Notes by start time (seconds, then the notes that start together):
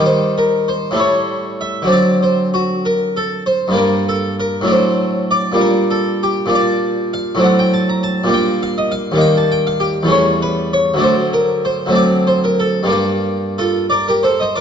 Already playing: D#3
0.00 G3 G4
0.06 C5
0.38 A#4
0.68 C5
0.91 A2 G3 A3
0.96 E4 C#5
1.61 E5
1.82 D3 F#3 C4
1.88 D4
1.92 D5
2.23 C5
2.54 F#4
2.85 A#4
3.17 A4
3.46 C5
3.68 G2 G3 A#3
3.74 D4 A#4
4.09 A4
4.40 A#4
4.61 A2 F#3 A3
4.67 D4
4.71 C5
5.31 D5
5.52 A#2 G3 D4
5.61 A#4
5.91 A4
6.23 G4
6.46 A#2 G3 D4
6.55 D5
7.13 F5
7.35 A2 F#3 C4
7.40 D4 F#5
7.59 G5
7.73 A5
7.89 A#5
8.03 A5
8.24 A#2 G3
8.28 A#3 D4
8.34 G5
8.63 F5
8.78 D#5
8.92 F5
9.12 D#2 G3 A#3
9.17 D#4 G5
9.37 A5
9.51 G5
9.67 F5
9.80 G4
10.03 E2 G3 A3
10.09 C#4 C#5
10.42 B4
10.73 C#5
10.94 D2 F#3 A3
11.00 D4 C5
11.33 A#4
11.65 C5
11.86 D2 F#3 C4
11.92 D4 D5
12.27 C5
12.44 A#4
12.59 A4
12.83 G2 G3 A#3
12.88 D4 G4
13.58 F4 A4
13.90 A#4 D5
14.08 G4 A#4
14.23 A4 C5
14.40 C5 D#5
14.55 A#4 D5